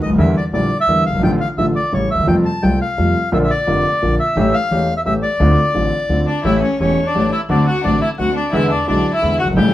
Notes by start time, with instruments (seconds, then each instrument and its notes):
0.02 upright bass C#2, grand piano C#2, bandoneon D#5
0.10 upright bass D2, grand piano D2
0.14 upright bass D#2 E2, grand piano D#2 D3 E3 G3
0.18 grand piano E2 A#3 E4, bandoneon E5
0.37 bandoneon D5
0.52 upright bass A#1, grand piano A#1 A#2 D3 G3 A#3 E4, bandoneon D5
0.81 bandoneon E5
0.87 upright bass E2, grand piano E2 D3 E3 G3 A#3 E4
1.06 upright bass F#1, bandoneon F5
1.10 grand piano F#1, upright bass G1
1.15 grand piano G1 G#1, upright bass G#1
1.22 upright bass A1, grand piano A1 A2 D3 F3 A3 F4, bandoneon G5
1.41 bandoneon F5
1.57 upright bass A1, grand piano A1 A2 D3 F3 A3 F4, bandoneon E5
1.75 bandoneon D5
1.92 grand piano A1 A2 C#3 G3 A3 E4, upright bass A1, bandoneon C#5
2.11 upright bass D2, bandoneon E5
2.15 grand piano D2, upright bass D#2
2.19 grand piano D#2, upright bass E2
2.23 grand piano E2 C3
2.27 grand piano F2 F3 G3 A3 F4, upright bass F2, bandoneon G5
2.45 bandoneon A5
2.63 grand piano C2 C3 G3 A3 F4, upright bass C2, bandoneon G5
2.81 bandoneon F5
2.98 grand piano F2 C3 F3 G3 A3 F4, upright bass F2
3.32 grand piano A#1 A#2 D3 F3 A#3 F4, upright bass A#1, bandoneon E5
3.44 bandoneon E5
3.50 bandoneon D5
3.67 grand piano F1 F2 D3 F3 A#3 F4, upright bass F1
4.02 grand piano A#1 A#2 D3 F3 A#3 F4, upright bass A#1
4.20 bandoneon E5
4.36 upright bass A1, grand piano A1 A2 E3 A3 C#4 G4
4.54 bandoneon F5
4.71 upright bass E1, grand piano E1 E2 E3 A3 C#4 G4
4.97 bandoneon E5
5.05 upright bass A1, grand piano A1 A2 E3 A3 C#4 G4, bandoneon E5
5.22 bandoneon D5
5.40 grand piano D2 D3 A3 C4 F4, upright bass D2
5.74 upright bass A1, grand piano A1 A2 D3 A3 C4 F4
6.09 upright bass D2, grand piano D2 D3 A3 C4 F4
6.27 violin D4, bandoneon D5
6.44 upright bass A1, grand piano A1 A2 E3 A3 C#4 G4, violin E4, bandoneon E5
6.62 violin C#4, bandoneon C#5
6.79 upright bass E1, grand piano E1 E2 E3 A3 C#4 G4, violin C#4, bandoneon C#5
7.07 violin D4, bandoneon D5
7.14 upright bass A1, grand piano A1 A2 E3 A3 C#4 G4
7.33 violin E4, bandoneon E5
7.49 upright bass D2, grand piano D2 D3 A3 C4 F#4, violin D4, bandoneon D5
7.68 violin F#4, bandoneon F#5
7.84 upright bass A1, grand piano A1 A2 D3 A3 C4 F#4, violin D4, bandoneon D5
8.02 violin E4, bandoneon E5
8.18 grand piano D2 D3 A3 C4 F#4, upright bass D2, violin F#4, bandoneon F#5
8.35 violin D4, bandoneon D5
8.53 grand piano E2 D3 E3 G#3 B3 E4, upright bass E2, violin E4, bandoneon E5
8.71 violin D4, bandoneon D5
8.87 grand piano B1 B2 D3 G#3 B3 E4, upright bass B1, violin D4, bandoneon D5
9.14 violin E4, bandoneon E5
9.22 grand piano E2 D3 E3 G#3 B3 E4, upright bass E2
9.39 violin F#4, bandoneon F#5
9.43 grand piano F#1 G1, upright bass F#1
9.49 upright bass G1, grand piano G#1
9.53 upright bass G#1, grand piano A1 A2 C#3 G3 A3 E4, violin G4, bandoneon G5
9.58 upright bass A1